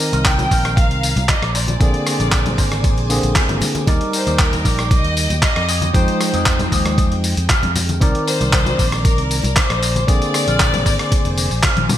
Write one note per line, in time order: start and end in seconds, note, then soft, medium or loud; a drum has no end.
0.00 1.13 D#3 loud
0.00 1.13 C4 medium
0.00 1.14 A#4 loud
0.00 0.24 D#5 loud
0.00 1.53 A#5 medium
0.00 open hi-hat loud
0.00 tambourine medium
0.12 0.48 C2 medium
0.12 0.25 D#4 medium
0.12 0.26 A#4 medium
0.12 0.26 C5 medium
0.12 0.26 F5 medium
0.12 closed hi-hat soft
0.12 tambourine soft
0.25 0.78 G5 loud
0.25 kick loud
0.25 clap loud
0.25 closed hi-hat medium
0.25 tambourine soft
0.39 muted clean electric guitar stroke soft
0.39 closed hi-hat soft
0.39 tambourine soft
0.39 low conga loud
0.51 0.90 A#1 medium
0.51 0.90 D#4 loud
0.51 0.91 A#4 medium
0.51 0.91 C5 medium
0.51 0.91 F5 loud
0.51 kick medium
0.51 open hi-hat loud
0.51 tambourine medium
0.65 cross-stick medium
0.65 closed hi-hat soft
0.65 tambourine soft
0.77 1.29 F5 loud
0.77 kick loud
0.77 closed hi-hat medium
0.77 tambourine soft
0.90 1.12 C2 medium
0.90 closed hi-hat soft
1.03 open hi-hat loud
1.03 tambourine medium
1.16 1.27 C2 loud
1.16 closed hi-hat soft
1.16 tambourine soft
1.16 low conga medium
1.28 1.48 D#4 medium
1.28 1.49 A#4 medium
1.28 1.49 C5 medium
1.28 1.49 D5 loud
1.28 1.55 D#5 loud
1.28 kick loud
1.28 clap loud
1.28 closed hi-hat medium
1.28 tambourine soft
1.28 high conga medium
1.42 1.78 A#1 loud
1.42 cross-stick medium
1.42 closed hi-hat soft
1.54 2.06 D4 loud
1.54 2.07 G#4 medium
1.54 2.07 A#4 medium
1.54 3.85 C5 medium
1.54 2.07 C5 medium
1.54 3.06 D5 loud
1.54 3.85 G#5 medium
1.54 3.85 D6 medium
1.54 open hi-hat loud
1.54 tambourine medium
1.68 closed hi-hat soft
1.68 tambourine soft
1.68 high conga loud
1.80 1.92 A#1 medium
1.80 3.07 D3 loud
1.80 3.07 A#3 medium
1.80 3.08 C4 medium
1.80 3.08 G#4 loud
1.80 kick loud
1.80 closed hi-hat medium
1.80 tambourine soft
1.94 closed hi-hat soft
2.07 cross-stick medium
2.07 open hi-hat loud
2.07 tambourine medium
2.19 2.55 A#1 medium
2.19 2.32 D4 medium
2.19 2.32 G#4 medium
2.19 2.33 A#4 medium
2.19 2.33 D5 medium
2.19 closed hi-hat soft
2.19 tambourine soft
2.32 kick loud
2.32 clap loud
2.32 closed hi-hat medium
2.32 tambourine soft
2.45 muted clean electric guitar stroke soft
2.45 closed hi-hat soft
2.45 tambourine soft
2.45 low conga medium
2.58 2.97 G#1 medium
2.58 2.97 D4 medium
2.58 2.97 G#4 medium
2.58 2.98 A#4 medium
2.58 2.98 C5 loud
2.58 kick medium
2.58 open hi-hat loud
2.58 tambourine medium
2.72 cross-stick medium
2.72 closed hi-hat soft
2.72 tambourine soft
2.84 kick loud
2.84 closed hi-hat medium
2.84 tambourine soft
2.97 3.19 A#1 medium
2.97 closed hi-hat soft
3.09 3.84 D3 medium
3.09 3.85 A#3 medium
3.09 3.85 C4 medium
3.09 3.85 G#4 medium
3.09 open hi-hat loud
3.09 tambourine medium
3.23 3.34 A#1 loud
3.23 closed hi-hat soft
3.23 tambourine soft
3.35 3.55 D4 medium
3.35 3.56 G#4 medium
3.35 3.56 A#4 medium
3.35 3.56 C5 loud
3.35 kick loud
3.35 clap loud
3.35 closed hi-hat medium
3.35 tambourine soft
3.35 high conga medium
3.49 3.60 G#1 loud
3.49 closed hi-hat soft
3.49 low conga medium
3.61 open hi-hat loud
3.61 tambourine medium
3.61 low conga medium
3.75 muted clean electric guitar stroke soft
3.75 closed hi-hat soft
3.75 tambourine soft
3.75 high conga loud
3.86 3.99 D#2 loud
3.86 5.26 G3 medium
3.86 4.07 D#4 loud
3.86 5.27 D#4 medium
3.86 4.07 G4 loud
3.86 4.07 A#4 medium
3.86 5.27 A#4 loud
3.86 4.08 D5 loud
3.86 5.67 G5 medium
3.86 5.67 D6 medium
3.86 kick loud
3.86 closed hi-hat medium
3.86 tambourine soft
4.01 closed hi-hat soft
4.13 4.38 C5 loud
4.13 open hi-hat loud
4.13 tambourine medium
4.26 4.62 D#2 medium
4.26 4.39 D#4 loud
4.26 4.39 G4 medium
4.26 4.40 A#4 medium
4.26 4.40 D5 loud
4.26 closed hi-hat soft
4.26 tambourine soft
4.39 4.91 A#4 loud
4.39 kick loud
4.39 clap loud
4.39 closed hi-hat medium
4.39 tambourine soft
4.52 muted clean electric guitar stroke soft
4.52 closed hi-hat soft
4.52 tambourine soft
4.52 low conga medium
4.64 5.04 A#1 medium
4.64 5.04 D#4 loud
4.64 5.04 G4 medium
4.64 5.05 A#4 medium
4.64 5.05 D5 loud
4.64 kick medium
4.64 open hi-hat loud
4.64 tambourine medium
4.79 cross-stick medium
4.79 closed hi-hat soft
4.79 tambourine soft
4.91 5.39 D#5 loud
4.91 kick loud
4.91 closed hi-hat medium
4.91 tambourine soft
5.04 5.26 D#2 medium
5.04 closed hi-hat soft
5.17 open hi-hat loud
5.17 tambourine medium
5.30 5.41 D#2 loud
5.30 closed hi-hat soft
5.30 tambourine soft
5.30 low conga medium
5.42 5.62 D#4 loud
5.42 5.62 G4 medium
5.42 5.63 A#4 medium
5.42 5.63 D5 medium
5.42 5.91 D#5 loud
5.42 kick loud
5.42 clap loud
5.42 closed hi-hat medium
5.42 tambourine soft
5.42 high conga medium
5.56 5.91 F2 loud
5.56 cross-stick medium
5.56 closed hi-hat soft
5.68 7.99 G#3 medium
5.68 6.20 F4 medium
5.68 6.20 G4 medium
5.68 6.21 G#4 medium
5.68 6.21 D#5 loud
5.68 7.99 G5 medium
5.68 open hi-hat loud
5.68 tambourine medium
5.82 closed hi-hat soft
5.82 tambourine soft
5.82 high conga loud
5.94 6.06 F2 loud
5.94 7.34 F3 loud
5.94 7.34 G#3 medium
5.94 7.34 D#4 medium
5.94 6.46 C5 loud
5.94 7.35 G5 loud
5.94 kick loud
5.94 closed hi-hat medium
5.94 tambourine soft
6.08 closed hi-hat soft
6.21 cross-stick medium
6.21 open hi-hat loud
6.21 tambourine medium
6.33 6.69 F2 medium
6.33 6.46 F4 medium
6.33 6.46 G4 medium
6.33 6.47 G#4 medium
6.33 6.47 D#5 medium
6.33 closed hi-hat soft
6.33 tambourine soft
6.46 6.95 C5 medium
6.46 kick loud
6.46 clap loud
6.46 closed hi-hat medium
6.46 tambourine soft
6.59 muted clean electric guitar stroke soft
6.59 closed hi-hat soft
6.59 tambourine soft
6.59 low conga loud
6.72 7.11 D#2 medium
6.72 7.11 F4 medium
6.72 7.11 G4 medium
6.72 7.12 G#4 medium
6.72 7.12 D#5 loud
6.72 kick medium
6.72 open hi-hat loud
6.72 tambourine medium
6.86 cross-stick medium
6.86 closed hi-hat soft
6.86 tambourine soft
6.98 kick loud
6.98 closed hi-hat medium
6.98 tambourine soft
7.11 7.33 F2 medium
7.11 closed hi-hat soft
7.24 open hi-hat loud
7.24 tambourine medium
7.37 7.48 F2 loud
7.37 closed hi-hat soft
7.37 tambourine soft
7.49 7.69 F4 loud
7.49 7.69 G4 medium
7.49 7.70 G#4 medium
7.49 7.70 F5 loud
7.49 kick loud
7.49 clap loud
7.49 closed hi-hat medium
7.49 tambourine soft
7.49 high conga medium
7.63 7.98 F2 loud
7.63 closed hi-hat soft
7.63 low conga medium
7.76 open hi-hat loud
7.76 tambourine medium
7.76 low conga medium
7.89 muted clean electric guitar stroke soft
7.89 closed hi-hat soft
7.89 tambourine soft
7.89 high conga medium
8.01 8.13 C2 loud
8.01 9.41 D#3 loud
8.01 9.41 C4 medium
8.01 8.21 D#4 loud
8.01 8.21 A#4 loud
8.01 9.42 A#4 loud
8.01 8.21 C5 loud
8.01 9.81 D5 medium
8.01 9.41 D5 medium
8.01 8.22 D5 loud
8.01 9.81 A#5 medium
8.01 kick loud
8.01 closed hi-hat loud
8.01 tambourine soft
8.15 closed hi-hat soft
8.27 9.01 C5 loud
8.27 open hi-hat loud
8.27 tambourine medium
8.40 8.76 C2 medium
8.40 8.53 D#4 loud
8.40 8.53 A#4 medium
8.40 8.53 C5 medium
8.40 8.54 D5 loud
8.40 closed hi-hat soft
8.40 tambourine soft
8.53 kick loud
8.53 clap loud
8.53 closed hi-hat loud
8.53 tambourine soft
8.66 muted clean electric guitar stroke soft
8.66 closed hi-hat soft
8.66 tambourine soft
8.66 low conga loud
8.78 9.18 A#1 medium
8.78 9.18 D#4 medium
8.78 9.18 A#4 medium
8.78 9.18 C5 medium
8.78 9.19 D5 loud
8.78 kick medium
8.78 open hi-hat loud
8.78 tambourine medium
8.92 cross-stick medium
8.92 closed hi-hat soft
8.92 tambourine soft
9.05 9.57 A#4 loud
9.05 kick loud
9.05 closed hi-hat loud
9.05 tambourine soft
9.18 9.40 C2 medium
9.18 closed hi-hat soft
9.31 open hi-hat loud
9.31 tambourine medium
9.43 9.55 C2 loud
9.43 closed hi-hat soft
9.43 tambourine soft
9.43 low conga medium
9.56 9.76 D#4 loud
9.56 9.76 A#4 medium
9.56 10.09 C5 loud
9.56 9.76 C5 medium
9.56 9.77 D5 loud
9.56 kick loud
9.56 clap loud
9.56 closed hi-hat medium
9.56 tambourine soft
9.56 high conga medium
9.70 10.05 A#1 loud
9.70 cross-stick medium
9.70 closed hi-hat soft
9.82 10.34 G#4 loud
9.82 10.34 A#4 medium
9.82 10.34 C5 medium
9.82 11.98 C5 medium
9.82 10.35 D5 loud
9.82 11.98 G#5 medium
9.82 11.98 D6 medium
9.82 open hi-hat loud
9.82 tambourine medium
9.96 closed hi-hat soft
9.96 tambourine soft
9.96 high conga medium
10.07 10.20 A#1 loud
10.07 11.47 D3 loud
10.07 11.48 A#3 medium
10.07 11.48 C4 medium
10.07 11.48 G#4 loud
10.07 11.60 D5 loud
10.07 kick loud
10.07 closed hi-hat loud
10.07 tambourine soft
10.22 closed hi-hat soft
10.22 tambourine soft
10.34 cross-stick medium
10.34 open hi-hat loud
10.34 tambourine medium
10.47 10.83 A#1 medium
10.47 10.60 G#4 loud
10.47 10.60 A#4 medium
10.47 10.60 C5 medium
10.47 10.61 F5 loud
10.47 closed hi-hat soft
10.47 tambourine soft
10.60 kick loud
10.60 clap loud
10.60 closed hi-hat loud
10.60 tambourine soft
10.73 muted clean electric guitar stroke soft
10.73 closed hi-hat soft
10.73 tambourine soft
10.73 low conga loud
10.85 10.97 G#1 medium
10.85 11.25 G#4 loud
10.85 11.25 A#4 medium
10.85 11.25 C5 medium
10.85 11.25 D5 loud
10.85 kick medium
10.85 open hi-hat loud
10.85 tambourine medium
10.99 cross-stick medium
10.99 closed hi-hat soft
10.99 tambourine soft
11.12 kick loud
11.12 closed hi-hat loud
11.12 tambourine soft
11.25 11.47 F1 medium
11.25 closed hi-hat soft
11.38 open hi-hat loud
11.38 tambourine medium
11.51 11.62 A#1 medium
11.51 open hi-hat medium
11.51 tambourine soft
11.63 11.83 G#4 loud
11.63 11.83 A#4 medium
11.63 11.83 C5 medium
11.63 11.84 F5 medium
11.63 kick loud
11.63 clap loud
11.63 closed hi-hat loud
11.63 tambourine soft
11.63 high conga medium
11.77 11.87 A#1 medium
11.77 closed hi-hat soft
11.77 high tom medium
11.77 low conga medium
11.89 open hi-hat loud
11.89 mid tom medium
11.89 tambourine medium
11.89 high conga medium
11.89 low conga medium